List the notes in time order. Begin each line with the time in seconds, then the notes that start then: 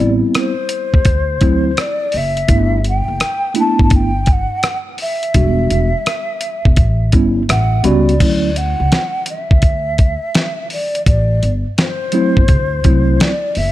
Already playing: G3 B3 D5
0.00 A1 C4 E4
0.35 C5, cross-stick, closed hi-hat
0.69 closed hi-hat
0.94 E2, kick
1.05 D2, kick, closed hi-hat
1.41 D2 F#3 A3 C4 E4, kick, closed hi-hat
1.77 D5, cross-stick, closed hi-hat
2.12 F#1, open hi-hat
2.17 E5
2.37 closed hi-hat
2.48 G1 A3 B3 D4 E4, kick, closed hi-hat
2.84 G5, closed hi-hat
3.08 F#1
3.20 cross-stick, closed hi-hat
3.54 A3 A#3 D4 E4, closed hi-hat
3.60 B3 A5
3.79 G1 A5, kick
3.90 kick, closed hi-hat
3.94 G5
4.26 kick, closed hi-hat
4.32 F#5
4.63 cross-stick, closed hi-hat
4.98 E5, open hi-hat
5.23 closed hi-hat
5.34 E1 G3 B3 D4 F#4, kick, closed hi-hat
5.70 E1, closed hi-hat
6.06 cross-stick, closed hi-hat
6.41 closed hi-hat
6.65 E1, kick
6.76 A1, kick, closed hi-hat
7.12 G1 G3 B3 C#4 E4, kick, closed hi-hat
7.49 A1 E5 F#5, cross-stick, closed hi-hat
7.83 C#2 G3 B3 C#4 F#4 D5 B5, closed hi-hat
8.09 closed hi-hat
8.20 D2 F#3 A3 C#4 E4, kick, closed hi-hat, crash
8.56 F#5, closed hi-hat
8.80 C#2
8.92 snare, closed hi-hat
9.26 E5, closed hi-hat
9.51 D2, kick
9.62 kick, closed hi-hat
9.98 kick, closed hi-hat
10.35 snare, closed hi-hat
10.70 D5, open hi-hat
10.95 closed hi-hat
11.06 A1 D5, kick, closed hi-hat
11.43 G1, closed hi-hat
11.77 C5, snare, closed hi-hat
12.12 F#3 A3 C4 E4, closed hi-hat
12.37 G1, kick
12.48 D2, kick, closed hi-hat
12.84 C2 F#3 A3 C4 E4, kick, closed hi-hat
13.20 D5, snare, closed hi-hat
13.55 F#1 E5, open hi-hat